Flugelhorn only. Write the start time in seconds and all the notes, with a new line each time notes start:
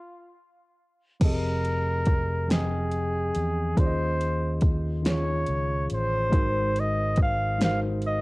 Already playing: F4
1.24 A#4
2.51 G#4
3.79 C5
5.09 C#5
5.94 C5
6.80 D#5
7.22 F5
7.64 F5
8.06 D#5